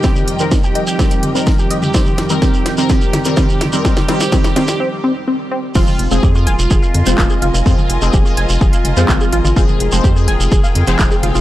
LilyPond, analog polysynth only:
\new Staff \with { instrumentName = "Analog polysynth" } { \time 4/4 \key f \minor \tempo 4 = 126 g'8 r16 bes'16 r16 g'16 r16 g'16 g'8 r16 bes'16 r16 g'16 r16 g'16 | r8. bes'16 g'8 r16 bes'16 g'8 r16 bes'16 g'8 r16 bes'16 | g'8 g'8 g'8 g'8 r2 | f'8 r16 aes'16 r16 f'16 r16 f'2 r16 |
f'8 r16 aes'16 r16 f'16 r16 f'2 r16 | aes'8 r16 c''16 r16 aes'16 r16 aes'2 r16 | }